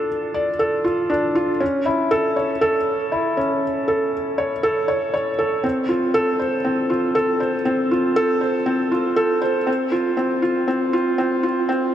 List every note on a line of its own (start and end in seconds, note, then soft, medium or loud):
0.00 1.10 D4 medium
0.00 0.84 F4 medium
0.00 0.59 A4 medium
0.00 0.34 D5 medium
0.34 0.49 D5 medium
0.59 0.84 A4 medium
0.84 1.09 F4 medium
1.10 1.34 D4 medium
1.35 1.50 F4 medium
1.60 1.85 C#4 medium
1.86 2.10 E4 medium
2.11 2.35 A4 medium
2.36 2.51 C#5 medium
2.61 2.76 A4 medium
3.12 3.36 E4 medium
3.37 3.61 C#4 medium
3.88 4.12 A4 medium
4.38 4.52 C#5 medium
4.63 4.87 A4 medium
4.88 5.12 C#5 medium
5.14 5.28 C#5 medium
5.39 5.63 A4 medium
5.64 5.88 C4 medium
5.89 6.13 F4 medium
6.14 6.38 A4 medium
6.39 6.54 C5 medium
6.65 6.89 C4 medium
6.90 7.14 F4 medium
7.15 7.39 A4 medium
7.40 7.55 C5 medium
7.65 7.90 C4 medium
7.91 8.15 F4 medium
8.16 8.40 A4 loud
8.41 8.56 C5 medium
8.66 8.90 C4 medium
8.92 9.16 F4 medium
9.16 9.41 A4 medium
9.42 9.56 C5 medium
9.67 9.91 C4 medium
9.92 10.15 F4 medium
10.17 10.41 C4 medium
10.42 10.66 F4 medium
10.68 10.92 C4 medium
10.93 11.17 F4 medium
11.18 11.42 C4 medium
11.43 11.67 F4 medium
11.69 11.92 C4 medium